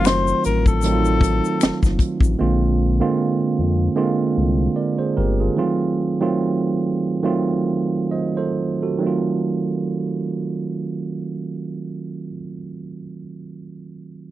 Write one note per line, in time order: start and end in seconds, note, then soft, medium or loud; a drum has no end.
0.00 0.34 F#1 medium
0.00 0.84 D#3 medium
0.00 0.84 F#3 medium
0.00 0.85 A3 medium
0.00 0.85 C4 medium
0.00 0.92 F4 medium
0.05 0.45 C5 loud
0.05 finger snap medium
0.05 snare loud
0.05 closed hi-hat medium
0.05 shaker medium
0.27 shaker soft
0.44 1.41 A1 medium
0.44 0.65 A#4 medium
0.44 closed hi-hat medium
0.44 shaker medium
0.66 1.97 A4 medium
0.66 kick medium
0.66 shaker soft
0.82 2.29 D#3 medium
0.82 2.29 F#3 medium
0.82 2.29 A3 medium
0.82 2.29 C4 medium
0.82 closed hi-hat medium
0.82 shaker medium
0.86 0.92 D#4 medium
0.92 2.33 F4 medium
1.05 shaker soft
1.21 kick medium
1.21 closed hi-hat medium
1.21 shaker medium
1.45 shaker medium
1.61 1.71 F#1 soft
1.61 finger snap medium
1.61 snare loud
1.61 closed hi-hat medium
1.61 shaker medium
1.83 1.97 F#1 medium
1.83 kick medium
1.83 snare soft
1.83 shaker medium
1.99 kick medium
1.99 closed hi-hat medium
2.20 2.35 A1 loud
2.20 kick loud
2.20 shaker soft
2.39 3.02 A#1 loud
2.39 2.95 D3 medium
2.39 2.95 G#3 medium
2.39 2.95 A#3 medium
2.39 2.96 C4 medium
2.39 2.96 F4 loud
3.00 3.89 D3 medium
3.00 3.90 G#3 medium
3.00 3.90 A#3 medium
3.00 3.90 C4 medium
3.00 3.90 F4 loud
3.59 3.89 F2 loud
3.95 5.45 D3 medium
3.95 5.46 G#3 medium
3.95 5.46 A#3 medium
3.95 5.46 C4 medium
3.95 4.77 F4 loud
4.38 4.68 C2 medium
4.76 4.98 A#4 medium
4.76 4.98 D5 medium
4.99 5.16 G#4 medium
4.99 5.15 C5 medium
5.17 5.49 G1 medium
5.17 5.39 G4 medium
5.17 5.38 A#4 medium
5.40 5.58 F4 medium
5.40 5.79 G#4 medium
5.57 6.16 D#3 medium
5.57 6.16 F#3 medium
5.57 6.17 A3 medium
5.57 6.17 C4 medium
5.57 6.17 F4 loud
6.20 7.17 D#3 medium
6.20 7.17 F#3 medium
6.20 7.17 A3 medium
6.20 7.17 C4 medium
6.20 7.18 F4 loud
7.23 8.89 D#3 medium
7.23 8.89 F#3 medium
7.23 8.89 A3 medium
7.23 8.90 C4 medium
7.23 8.13 F4 loud
8.11 8.36 C5 medium
8.11 8.36 D#5 medium
8.37 8.81 A4 medium
8.37 8.80 C5 medium
8.82 9.26 F#4 medium
8.82 9.26 A4 medium
8.98 12.29 D#3 medium
8.98 12.31 F#3 medium
9.03 12.34 A3 medium
9.03 12.36 C4 medium
9.03 12.38 F4 medium